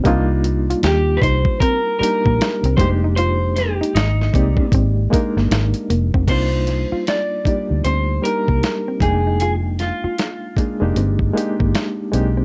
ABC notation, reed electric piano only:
X:1
M:4/4
L:1/16
Q:"Swing 16ths" 1/4=77
K:Cm
V:1 name="Reed electric piano"
[G,B,DEF]6 z4 [G,B,DEG]4 [G,A,B,DEG]2- | [G,A,B,DEG]4 z2 [A,B,EGd]3 z [A,B,DEB]4- [A,B,DEB] z | [G,B,DEF]4- [G,B,DEF] z [G,B,DEG]3 z [G,B,DEG]4 [G,A,B,DEg]2- | [G,A,B,DEg]4 z2 [A,B,DEA] [A,B,DEG]2 z [A,B,DEG]3 z [A,B,DEG]2 |]